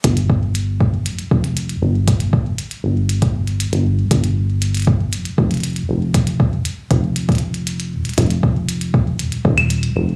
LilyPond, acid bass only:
\new Staff \with { instrumentName = "Acid bass" } { \clef bass \time 4/4 \key f \dorian \tempo 4 = 118 g,,2 f,,16 r16 f,,8. r16 g,,8~ | g,,8. r8. g,,4. r16 g,,8 r16 | g,,2 f,,16 r16 f,,8. r16 f,,8~ | f,,8. r8. f,,2 ees,,16 r16 |
f,,2 ees,,16 r16 ees,,8. r16 f,,8 | }